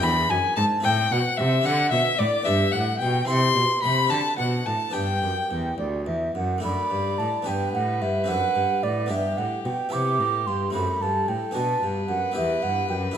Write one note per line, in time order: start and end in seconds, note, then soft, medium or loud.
0.00 0.30 E2 loud
0.00 0.28 E2 medium
0.00 0.80 D4 medium
0.00 0.80 E4 medium
0.00 0.81 G#4 medium
0.00 0.31 B5 loud
0.00 0.32 B5 loud
0.30 0.54 F#2 medium
0.30 0.38 F#2 medium
0.30 0.55 G#5 loud
0.30 0.56 G#5 loud
0.56 0.82 G#2 medium
0.56 0.65 G#2 loud
0.56 0.83 A5 loud
0.56 0.64 A5 loud
0.80 1.60 C4 medium
0.80 1.62 E4 medium
0.80 1.63 A4 medium
0.80 1.13 G5 loud
0.84 1.11 A2 medium
0.84 1.09 A2 medium
0.84 0.91 G5 loud
1.11 1.19 B2 loud
1.11 1.36 B2 medium
1.11 1.17 F#5 loud
1.11 1.39 F#5 loud
1.37 1.65 C3 loud
1.37 1.63 C3 medium
1.37 1.67 E5 loud
1.61 2.42 C4 medium
1.61 2.43 D4 medium
1.61 2.44 A4 medium
1.61 1.91 F#5 loud
1.61 1.93 F#5 loud
1.66 1.92 D3 loud
1.66 1.90 D3 medium
1.92 2.17 B2 medium
1.92 2.00 B2 medium
1.92 2.20 E5 loud
1.92 2.18 E5 loud
2.18 2.28 A2 medium
2.18 2.44 A2 medium
2.18 2.46 D5 loud
2.43 2.73 G2 loud
2.43 2.71 B3 medium
2.43 2.72 D4 medium
2.43 3.26 G4 medium
2.43 2.74 E5 loud
2.47 2.72 G2 medium
2.47 2.72 E5 loud
2.72 3.01 A2 medium
2.72 2.99 A2 medium
2.72 2.99 F#5 loud
2.72 3.03 F#5 medium
2.99 3.28 B2 medium
2.99 3.26 B2 medium
2.99 3.27 G5 loud
2.99 3.29 G5 loud
3.25 3.55 C3 loud
3.25 4.05 C4 medium
3.25 4.08 E4 medium
3.25 4.09 G4 medium
3.25 3.83 C6 loud
3.25 3.82 C6 loud
3.30 3.54 C3 medium
3.56 3.64 B2 medium
3.56 3.81 B2 medium
3.82 4.11 C3 medium
3.82 4.09 C3 medium
3.82 4.11 B5 loud
4.06 4.90 C4 medium
4.06 4.90 D4 medium
4.06 4.92 F#4 medium
4.06 4.36 A5 medium
4.06 4.38 A5 loud
4.11 4.36 D3 medium
4.11 4.19 D3 medium
4.37 4.64 B2 medium
4.37 4.66 B2 medium
4.37 4.43 F#5 medium
4.37 4.68 F#5 medium
4.65 4.92 A2 medium
4.65 4.75 A2 medium
4.65 4.94 A5 medium
4.65 4.95 A5 loud
4.90 5.20 B3 medium
4.90 5.21 D4 medium
4.90 6.59 G4 medium
4.90 5.78 G5 medium
4.90 5.78 G5 loud
4.95 5.20 G2 medium
4.95 5.23 G2 medium
5.23 5.48 F#2 medium
5.23 5.32 F#2 medium
5.51 5.76 E2 medium
5.51 5.79 E2 medium
5.78 6.04 D2 medium
5.78 6.09 D2 medium
5.78 6.05 D5 medium
6.06 6.32 E2 medium
6.06 6.36 E2 medium
6.06 6.35 E5 medium
6.35 6.61 F#2 medium
6.35 6.64 F#2 medium
6.35 6.63 F#5 medium
6.58 6.88 A3 soft
6.58 7.42 D4 soft
6.58 7.43 A4 medium
6.63 6.88 F#2 medium
6.63 6.72 F#2 medium
6.63 7.48 D5 medium
6.63 7.20 B5 loud
6.91 7.16 G2 medium
6.91 7.19 G2 medium
7.18 7.27 A2 medium
7.18 7.44 A2 medium
7.18 7.48 A5 medium
7.42 7.71 B3 soft
7.42 7.72 D4 medium
7.42 8.26 G4 medium
7.47 7.74 G2 medium
7.47 7.72 G2 medium
7.47 9.12 B4 medium
7.47 7.73 G5 medium
7.74 8.03 A2 medium
7.74 7.99 A2 medium
7.74 8.03 F#5 medium
8.02 8.28 G2 medium
8.02 8.26 G2 medium
8.02 8.30 E5 medium
8.24 8.53 C4 soft
8.24 9.06 D4 soft
8.24 9.07 A4 soft
8.28 8.53 F#2 medium
8.28 8.37 F#2 medium
8.28 8.85 F#5 loud
8.56 8.80 G2 medium
8.56 8.64 G2 medium
8.83 9.08 A2 medium
8.83 9.12 A2 medium
8.83 9.12 D5 medium
9.06 9.35 B3 soft
9.06 9.36 D4 soft
9.06 9.89 G4 soft
9.11 9.35 G2 medium
9.11 9.37 G2 medium
9.11 9.90 G4 medium
9.11 9.39 E5 medium
9.37 9.46 A2 medium
9.37 9.63 A2 medium
9.37 9.64 F#5 medium
9.64 9.73 B2 medium
9.64 9.90 B2 medium
9.64 9.94 G5 medium
9.89 10.21 C3 medium
9.89 10.17 C3 soft
9.89 10.70 B3 medium
9.89 10.70 E4 medium
9.89 10.72 G4 medium
9.89 10.71 G4 medium
9.89 10.48 D6 loud
10.19 10.48 A2 medium
10.19 10.45 A2 soft
10.46 10.73 G2 medium
10.46 10.72 G2 medium
10.46 10.73 C6 medium
10.70 11.01 F#2 medium
10.70 10.98 A3 soft
10.70 10.99 C4 soft
10.70 11.52 F#4 soft
10.70 11.56 A4 medium
10.70 11.03 B5 medium
10.75 10.99 F#2 medium
11.01 11.28 G2 medium
11.01 11.26 G2 medium
11.01 11.30 A5 medium
11.28 11.53 A2 medium
11.28 11.37 A2 medium
11.28 11.56 G5 medium
11.51 12.30 B3 soft
11.51 12.32 D4 soft
11.51 12.33 F#4 medium
11.51 13.18 B4 medium
11.51 11.84 A5 loud
11.56 11.80 B2 medium
11.56 11.82 B2 medium
11.83 12.09 G2 medium
11.83 12.07 G2 medium
12.09 12.33 F#2 medium
12.09 12.17 F#2 medium
12.09 12.36 F#5 medium
12.32 12.86 B3 soft
12.32 13.12 E4 medium
12.32 13.14 G4 medium
12.36 12.60 E2 medium
12.36 12.63 E2 medium
12.36 12.64 E5 medium
12.62 12.87 G2 medium
12.62 12.90 G2 medium
12.62 12.89 F#5 medium
12.89 13.14 F#2 medium
12.89 13.16 F#2 medium
12.89 12.96 G5 medium
13.11 13.18 D4 soft
13.11 13.18 E4 soft